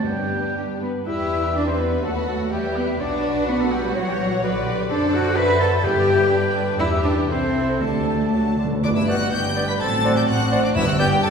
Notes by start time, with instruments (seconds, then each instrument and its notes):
0.04 timpani G2, double bass section G2, bassoon G3, french horn section G3 B3, cello section G3, clarinet B3, viola section D4, violin section G4 B4, oboe G5
0.56 french horn section G3, cello section G3, oboe G4, flute G5
0.81 french horn section B3, cello section B3, oboe B4, flute B5
1.05 double bass section E2, bassoon G3, french horn section E4, cello section E4, violin section G4 E5, viola section G4 B4, clarinet B4, oboe E5, flute E6
1.31 viola section E4
1.55 french horn section D4, cello section D4, violin section B4, viola section B4, oboe D5, flute D6
1.67 french horn section C4, cello section C4, oboe C5, flute C6
1.79 french horn section B3, cello section B3, oboe B4, flute B5
2.03 double bass section D#2, bassoon F#3, french horn section A3, cello section A3, violin section F#4 F#5, viola section F#4 A4, oboe A4, flute A5
2.15 french horn section B3, cello section B3, oboe B4, flute B5
2.28 french horn section A3, cello section A3, oboe A4, flute A5
2.51 double bass section E2, french horn section G3, cello section G3, bassoon G3, oboe G4, viola section G4 B4, violin section G4 E5, flute G5
2.76 cello section B3, french horn section B3, oboe B4, flute B5
3.00 double bass section B1, bassoon F#3, cello section D4, french horn section D4, violin section F#4 D5, viola section F#4 B4, clarinet B4, oboe D5, flute D6
3.48 cello section B3, french horn section B3, viola section F#4, oboe B4, violin section F#5, flute B5
3.60 cello section A3, french horn section A3, oboe A4, flute A5
3.72 cello section G3, french horn section G3, oboe G4, flute G5
3.95 double bass section A#1, bassoon E3, cello section F#3, french horn section F#3, oboe F#4, violin section C#5 F#5, clarinet C#5, viola section C#5, flute F#5
4.08 cello section G3, french horn section G3, oboe G4, flute G5
4.20 french horn section F#3, cello section F#3, oboe F#4, flute F#5
4.42 double bass section B1, bassoon D3, french horn section F#3, cello section F#3, viola section F#4 D5, oboe F#4, violin section B4 D5, clarinet B4, flute F#5
4.67 viola section G4
4.90 double bass section F#2, french horn section D4, cello section D4, violin section A4 D5, viola section A4 D5, clarinet C5, oboe D5, flute D6
5.14 french horn section F#4, cello section F#4, oboe F#5, flute F#6
5.36 violin section F#4 E5, french horn section B4, cello section B4, viola section C5, oboe B5, flute B6
5.59 french horn section A4, cello section A4, oboe A5, flute A6
5.77 cello section A4
5.82 timpani G2, double bass section G2, bassoon D3, violin section E4 D5, french horn section G4, cello section G4, viola section B4, clarinet B4, oboe G5, flute G6
6.08 violin section D5
6.31 violin section D4 G5, viola section B4 D5
6.79 double bass section E2, bassoon E3, french horn section E4, cello section E4, viola section G4 B4, violin section G4 E5, clarinet G4, oboe E5, flute E6
7.04 french horn section D4, cello section D4, oboe D5, flute D6
7.29 double bass section C2, cello section C4, french horn section C4, violin section E4 E5, viola section A4, clarinet A4, oboe C5, flute C6
7.81 double bass section D2, timpani D3, bassoon G3, cello section A3, french horn section A3, violin section D4 A5, viola section G4 A4, oboe A4, flute A5
8.33 double bass section D2, timpani D3, bassoon F#3, viola section F#4 A4, violin section A5
8.41 timpani D3
8.49 timpani D3
8.57 timpani D3, bassoon D3
8.65 timpani D3
8.72 timpani D3
8.83 double bass section G1, timpani G2, cello section G2, french horn section G3 B3, viola section B3 B4, trumpet D4, flute D5, violin section D5 D6
8.95 viola section D4 D5, trumpet E4, flute E5, violin section E5 E6
9.07 viola section B3 B4, bassoon B3, trumpet F#4, clarinet D5, flute F#5, violin section F#5 F#6, oboe G5
9.20 viola section D4 D5
9.32 double bass section G1, cello section G2, french horn section G3 B3, viola section B3 B4, trumpet G4, flute G5, violin section G5 G6
9.44 viola section D4 D5
9.56 bassoon B3, viola section B3 B4, clarinet D5, oboe G5
9.68 viola section D4 D5, trumpet B4, flute B5, violin section B5 B6
9.80 double bass section A1, cello section A2, french horn section F#3 C4, viola section C4 C5, trumpet A4, flute A5, violin section A5 A6
9.92 viola section D4 D5
10.04 viola section C4 C5, bassoon C4, clarinet D5, oboe F#5
10.16 viola section D4 D5, trumpet G4, flute G5, violin section G5 G6
10.27 double bass section A1, cello section A2, french horn section F#3 C4, viola section C4 C5, trumpet F#4, flute F#5, violin section F#5 F#6
10.40 viola section D4 D5
10.52 viola section C4 C5, bassoon C4, clarinet D5, oboe F#5
10.63 viola section D4 D5, trumpet D4, flute D5, violin section D5 D6
10.75 double bass section G1, cello section G2, timpani G2, french horn section G3 B3, viola section B3 B4, trumpet E4, flute E5, violin section E5 E6
10.86 viola section D4 D5, trumpet F#4, flute F#5, violin section F#5 F#6
10.98 viola section B3 B4, bassoon B3, trumpet G4, clarinet D5, flute G5, violin section G5 G6, oboe G5
11.11 viola section D4 D5
11.23 double bass section G1, cello section G2, viola section B3 B4, trumpet A4, flute A5, violin section A5 A6